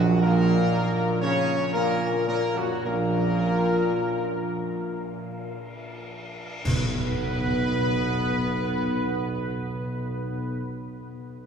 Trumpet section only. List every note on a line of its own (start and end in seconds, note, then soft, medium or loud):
0.00 0.18 F#4 loud
0.21 1.18 A#4 loud
1.21 1.70 C#5 loud
1.73 2.24 A#4 loud
2.28 2.54 A#4 loud
2.58 2.86 F#4 loud
2.84 5.24 A#4 loud
6.65 10.61 B4 loud